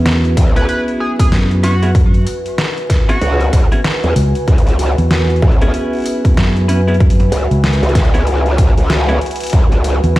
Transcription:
Already playing: fingered electric bass E2, clean electric guitar B3 C#4 E4 G#4, ambient pad C#4 F#4 B4 E5 F#5
0.06 snare, open hi-hat
0.25 open hi-hat
0.37 wobble bass C#2, kick, open hi-hat
0.56 clean electric guitar B3 C#4 E4 G#4, analog synth lead B4, open hi-hat
0.69 analog synth lead B4, open hi-hat
0.88 open hi-hat
1.00 analog synth lead G#4, ambient pad G#5
1.19 analog synth lead G#4, kick, open hi-hat
1.32 fingered electric bass F#2, snare, open hi-hat
1.51 open hi-hat
1.63 clean electric guitar B3 C#4 E4 B4, analog synth lead F#4, open hi-hat
1.82 clean electric guitar B3 C#4 E4 G#4, open hi-hat
1.95 kick, open hi-hat
2.14 open hi-hat
2.27 open hi-hat
2.46 open hi-hat
2.58 snare, open hi-hat
2.77 open hi-hat
2.90 kick, snare, open hi-hat
3.09 clean electric guitar B3 C#4 E4 G#4, analog synth lead F#4, open hi-hat
3.21 wobble bass C#2, snare, open hi-hat
3.41 open hi-hat
3.53 wobble bass C#2, kick, open hi-hat
3.72 clean electric guitar B3 C#4 E4 G#4, open hi-hat
3.84 snare, open hi-hat
4.04 wobble bass E2, open hi-hat
4.16 fingered electric bass C#2, open hi-hat
4.35 open hi-hat
4.48 wobble bass C#2, kick, open hi-hat
4.58 open hi-hat
4.67 snare, open hi-hat
4.69 open hi-hat
4.79 open hi-hat
4.98 fingered electric bass E2, open hi-hat
5.11 snare, open hi-hat
5.30 open hi-hat
5.36 open hi-hat
5.42 wobble bass C#2, kick, open hi-hat
5.52 open hi-hat
5.62 clean electric guitar B3 C#4 E4 G#4, open hi-hat
5.74 open hi-hat
5.93 open hi-hat
5.95 open hi-hat
5.97 open hi-hat
5.98 open hi-hat
6.00 open hi-hat
6.02 open hi-hat
6.04 open hi-hat
6.06 open hi-hat
6.25 kick, open hi-hat
6.37 fingered electric bass F#2, snare, open hi-hat
6.57 open hi-hat
6.68 clean electric guitar B3 C#4 E4 B4, open hi-hat
6.88 clean electric guitar B3 C#4 E4 G#4, open hi-hat
6.94 open hi-hat
7.00 kick, open hi-hat
7.10 open hi-hat
7.20 snare, open hi-hat
7.32 wobble bass C#2, open hi-hat
7.51 fingered electric bass C#2, open hi-hat
7.64 snare, open hi-hat
7.73 open hi-hat
7.82 wobble bass C#2, open hi-hat
7.89 open hi-hat
7.95 kick, snare, open hi-hat
8.05 open hi-hat
8.14 clean electric guitar B3 C#4 E4 G#4, open hi-hat
8.27 snare, open hi-hat
8.46 open hi-hat
8.58 kick, open hi-hat
8.77 wobble bass C#2, open hi-hat
8.90 snare, open hi-hat
9.09 clean electric guitar B3 C#4 E4 G#4, open hi-hat
9.21 open hi-hat
9.26 open hi-hat
9.31 open hi-hat
9.36 open hi-hat
9.40 open hi-hat
9.43 open hi-hat
9.47 open hi-hat
9.50 open hi-hat
9.53 wobble bass C#2, kick, open hi-hat
9.72 snare, open hi-hat
9.84 open hi-hat
10.04 fingered electric bass E2, open hi-hat
10.16 snare, open hi-hat

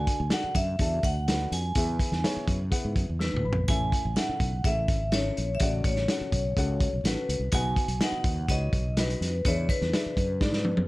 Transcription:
Already playing: upright piano D3 D4 F#4 A4 F#5, vibraphone G#5
0.07 kick, closed hi-hat
0.20 fretless electric bass D2
0.30 upright piano D4 F#4 A4 F#5, vibraphone F#5, snare, closed hi-hat
0.44 muted fretless electric bass stroke
0.55 fretless electric bass F#2, vibraphone E5, kick, closed hi-hat
0.79 fretless electric bass E2, upright piano D4 F#4 A4 A5, kick, closed hi-hat
1.03 fretless electric bass D2, vibraphone F#5, kick, closed hi-hat
1.28 upright piano D4 F#4 A4 B4, snare, closed hi-hat
1.52 fretless electric bass F2, vibraphone G#5, closed hi-hat
1.75 fretless electric bass E2, upright piano E3 B3 E4 G#4 E5, kick, closed hi-hat
1.99 kick, closed hi-hat
2.12 fretless electric bass E2, snare
2.23 upright piano B3 E4 G#4 C#5, snare, closed hi-hat
2.36 muted fretless electric bass stroke
2.48 fretless electric bass F#2, kick, closed hi-hat
2.70 upright piano B3 E4 G#4 F#5, kick, closed hi-hat
2.85 fretless electric bass G#2
2.96 fretless electric bass F#2, kick, closed hi-hat
3.09 fretless electric bass E2
3.19 vibraphone B4, upright piano E6, snare
3.34 fretless electric bass D2, mid tom
3.45 fretless electric bass A#1, upright piano B5
3.53 floor tom
3.68 fretless electric bass A1, upright piano A2 C#4 E4 A4 E5, vibraphone G#5, kick, closed hi-hat
3.92 kick, closed hi-hat
4.05 fretless electric bass A1
4.16 upright piano C#4 E4 A4 E5, vibraphone F#5, snare, closed hi-hat
4.29 muted fretless electric bass stroke
4.40 fretless electric bass B1, kick, closed hi-hat
4.64 fretless electric bass A1, upright piano C#4 E4 A4 E5, vibraphone E5, kick, closed hi-hat
4.88 fretless electric bass G#1, kick, closed hi-hat
5.12 upright piano C#4 E4 A4 E5, vibraphone C#5, snare, closed hi-hat
5.37 fretless electric bass A#1, closed hi-hat
5.55 vibraphone E5
5.60 fretless electric bass A1, upright piano A2 C#4 F#4 A4 F#5, vibraphone D5, kick, closed hi-hat
5.84 fretless electric bass A1, vibraphone C#5, kick, closed hi-hat
5.96 snare
6.08 upright piano C#4 F#4 A4 F#5, snare, closed hi-hat
6.21 muted fretless electric bass stroke
6.32 fretless electric bass B1, kick, closed hi-hat
6.57 fretless electric bass C#2, upright piano C#4 F#4 A4 F#5, kick, closed hi-hat
6.80 kick, closed hi-hat
6.93 fretless electric bass B1
7.04 fretless electric bass A1, upright piano C#4 F#4 A4 F#5, vibraphone B4, snare, closed hi-hat
7.29 fretless electric bass C#2, closed hi-hat
7.39 fretless electric bass C2
7.52 fretless electric bass B1, upright piano B2 D#4 F#4 B4 F#5, vibraphone G#5, kick, closed hi-hat
7.76 kick, closed hi-hat
7.88 fretless electric bass B1, closed hi-hat
8.01 upright piano D#4 F#4 B4 D#5, vibraphone F#5, snare, closed hi-hat
8.12 muted fretless electric bass stroke
8.24 fretless electric bass D#2, kick, closed hi-hat
8.48 fretless electric bass C#2, upright piano D#4 F#4 B4 C#5, vibraphone D#5, kick, closed hi-hat
8.73 fretless electric bass B1, kick, closed hi-hat
8.97 upright piano D#4 F#4 B4 D#5, vibraphone B4, snare, closed hi-hat
9.10 closed hi-hat
9.21 fretless electric bass F2, snare, closed hi-hat
9.45 fretless electric bass E2, upright piano E3 D4 G#4 B4 E5, vibraphone C#5, kick, closed hi-hat
9.69 vibraphone B4, kick, closed hi-hat
9.81 fretless electric bass E2, snare
9.93 upright piano D4 G#4 B4 E5, snare, closed hi-hat
10.06 muted fretless electric bass stroke
10.17 fretless electric bass F#2, kick, closed hi-hat
10.40 fretless electric bass G#2, upright piano D4 G#4 B4 D5, kick, snare
10.53 snare
10.65 high tom
10.77 fretless electric bass F#2, high tom

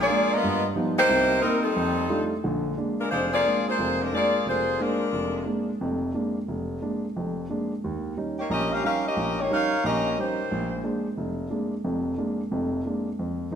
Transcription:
0.01 saxophone section A#3 F4 G#4 D5
0.10 grand piano G#3 A#3 D4
0.34 saxophone section B3 F4 A#4 D#5
0.43 grand piano G2
0.76 grand piano F3 G3 B3 D#4
0.98 saxophone section A#3 D#4 G4 C5
1.09 grand piano C2 C3
1.42 saxophone section G3 C4 D#4 A#4, grand piano A#3 C4 D#4
1.63 saxophone section G3 C4 D#4 A4
1.76 grand piano F2
2.10 grand piano G3 A3 D4 D#4 F4
2.44 grand piano A#1 D3
2.78 grand piano G#3 A#3 D4
3.00 saxophone section G#3 D4 F4 A#4
3.11 grand piano F1, saxophone section G#3 D4 F4 C5
3.33 saxophone section A#3 F4 G#4 D5
3.45 grand piano G#3 A#3 D4
3.68 saxophone section A#3 F4 G#4 C5
3.79 grand piano F1 F2
4.02 saxophone section G#3 D4 F4 A#4
4.13 grand piano G#3 A#3 D4, saxophone section A#3 F4 G#4 D5
4.46 grand piano F1, saxophone section A#3 F4 G#4 C5
4.79 grand piano G#3 A#3 D4, saxophone section G#3 D4 F4 A#4
5.13 grand piano F1
5.46 grand piano G#3 A#3 D4
5.81 grand piano F1 F2
6.14 grand piano G#3 A#3 D4
6.48 grand piano F1
6.82 grand piano G#3 A#3 D4
7.16 grand piano F1 F2
7.50 grand piano G#3 A#3 D4
7.84 grand piano D#2
8.17 grand piano G3 C#4 D#4
8.39 saxophone section A#3 D#4 G4 C#5
8.50 grand piano A#1, saxophone section C#4 G4 A#4 D#5
8.72 saxophone section C#4 G4 A#4 F5
8.84 grand piano G3 C#4 D#4, saxophone section C#4 G4 A#4 F5
9.06 saxophone section C#4 G4 A#4 D#5
9.17 grand piano A#1
9.41 saxophone section A#3 D#4 G4 C#5
9.50 grand piano G3 C#4 D#4, saxophone section D#4 A#4 C#5 F5
9.84 grand piano A#1 A#2, saxophone section C#4 G4 A#4 D#5
10.18 grand piano G3 C#4 D#4, saxophone section A#3 D#4 G4 C5
10.52 grand piano A#1
10.84 grand piano G#3 A#3 D4
11.17 grand piano F1
11.50 grand piano G#3 A#3 D4
11.84 grand piano F1 F2
12.18 grand piano G#3 A#3 D4
12.51 grand piano F1 F2
12.86 grand piano G#3 A#3 D4
13.19 grand piano F2
13.51 grand piano F3 A3

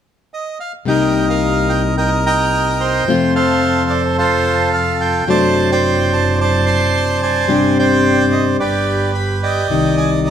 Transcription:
0.34 bandoneon D#5
0.60 bandoneon F5
0.85 double bass C2, nylon-string guitar C3 G3 A#3 D#4 G4, bandoneon A#4 D#5 G5
1.30 bandoneon A#4 F5
1.69 bandoneon G5
1.97 bandoneon A#4 D#5 G5
2.26 bandoneon D#5 G5 A#5
2.80 bandoneon C5 G5
3.07 double bass F2, nylon-string guitar C3 F3 A3 C4 F4
3.35 bandoneon A4 C5 F5
3.90 bandoneon D5
4.18 bandoneon F4 A4 C5
4.73 bandoneon F5
5.01 bandoneon G5
5.27 double bass F#1, nylon-string guitar C3 F#3 A3 D4, bandoneon C5 D5 A5
5.72 bandoneon C5 D5 G5
6.13 bandoneon A5
6.41 bandoneon C5 D5 A5
6.66 bandoneon A5 C6
7.22 bandoneon C5 D5 G#5
7.48 double bass G1, nylon-string guitar C3 G3 C4 D4 G4
7.79 bandoneon C5 D5 G5
8.32 bandoneon D#5
8.59 double bass G1, bandoneon G4 B4 D5
9.15 bandoneon B5
9.43 bandoneon D5 D#5 G5
9.70 double bass C2, nylon-string guitar C3 D#3 G3
9.98 bandoneon G#5

